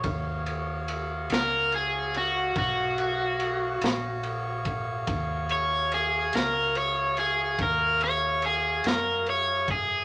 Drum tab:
RD |xxxxxxxxxxxx|xxxxxxxxxxxx|
SD |---o-----o--|---o-----o--|
BD |o-----o----o|o-----o----o|